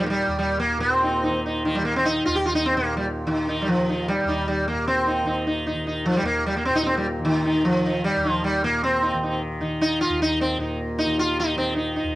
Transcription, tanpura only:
0.00 0.27 D#2 medium
0.00 0.78 A#2 medium
0.00 1.27 D#3 medium
0.27 2.26 D#2 medium
0.78 2.75 A#2 medium
1.27 1.78 D#3 medium
1.78 3.27 D#3 medium
2.26 4.24 D#2 medium
2.76 4.73 A#2 medium
3.27 3.75 D#3 medium
3.75 5.23 D#3 medium
4.25 6.21 D#2 medium
4.74 6.69 A#2 medium
5.23 5.72 D#3 medium
5.72 7.18 D#3 medium
6.22 8.15 D#2 medium
6.69 8.64 A#2 medium
7.18 7.67 D#3 medium
7.67 9.13 D#3 medium
8.16 10.08 D#2 medium
8.64 10.57 A#2 medium
9.13 9.61 D#3 medium
9.61 11.05 D#3 medium
10.09 12.02 D#2 medium
10.57 12.15 A#2 medium
11.05 11.54 D#3 medium
11.54 12.15 D#3 medium
12.03 12.15 D#2 medium

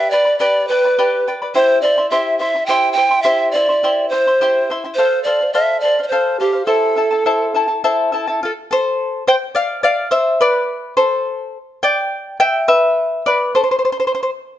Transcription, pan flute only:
0.00 0.12 E5 loud
0.11 0.38 D5 medium
0.39 0.69 D5 medium
0.68 1.33 B4 medium
1.55 1.81 C5 loud
1.81 2.09 D5 medium
2.10 2.37 E5 medium
2.39 2.68 E5 medium
2.66 2.92 G5 medium
2.93 3.24 G5 loud
3.22 3.53 E5 loud
3.51 4.08 D5 medium
4.09 4.70 C5 loud
4.95 5.22 C5 loud
5.24 5.51 D5 medium
5.53 5.80 E5 medium
5.80 6.01 D5 medium
6.03 6.09 D5 medium
6.08 6.38 C5 medium
6.40 6.65 G4 medium
6.66 7.77 A4 medium

